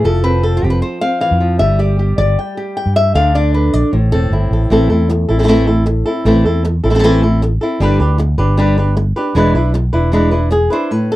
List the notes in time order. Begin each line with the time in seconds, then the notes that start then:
Already playing: A3
0.04 F1 F3 A4
0.24 C4 B4
0.43 A4
0.57 G4
0.63 F1 C4
0.70 B4
0.82 C5
1.01 C4 F5
1.21 E3 F5
1.31 F2
1.40 F3
1.59 G1 G3 E5
1.79 G4 D5
1.99 G4
2.18 G1 D5
2.39 G5
2.57 G4
2.77 G5
2.86 G2
2.96 E5
3.15 D2 D3 D4 A4 F5
3.35 D4 D5
3.54 B4
3.74 A#1 D5
3.93 A1 A2 C5
4.12 E1 C4 A4
4.30 G1 E4
4.51 A1 A4
4.70 A1 E3 A3 C4 E4 A4
4.90 E2 C4 E4 A4
5.09 muted nylon-string guitar stroke
5.29 A1 C4 E4 A4
5.39 A3 C4 E4 A4
5.43 A3 C4 E4 A4
5.48 E3 A3 C4 E4 A4
5.67 C4 E4 A4
5.86 muted nylon-string guitar stroke
6.06 C4 E4 A4
6.25 A1 E3 A3 C4 E4 A4
6.45 E2 C4 E4 A4
6.65 muted nylon-string guitar stroke
6.84 A1 C4 E4 A4
6.90 A3 C4 E4 A4
6.95 A3 C4 E4 A4
6.99 A3 C4 E4 A4
7.04 E3 A3 C4 E4 A4
7.23 C4 E4 A4
7.42 muted nylon-string guitar stroke
7.61 C4 E4 A4
7.80 G1 G3 D4 G4 B4
7.99 D2 D4 G4 B4
8.18 muted nylon-string guitar stroke
8.38 G1 D4 G4 B4
8.57 G3 D4 G4 B4
8.78 D4 G4 B4
8.97 muted nylon-string guitar stroke
9.16 D4 G4 B4
9.35 E1 E3 G#3 D4 E4 B4
9.55 B1 D4 E4 B4
9.74 muted nylon-string guitar stroke
9.93 E1 D4 E4 B4
10.12 E3 G#3 D4 E4 B4
10.31 D4 E4 B4
10.51 G#4, muted nylon-string guitar stroke
10.70 D4 E4 B4 C5
10.91 A2 B4
11.12 A4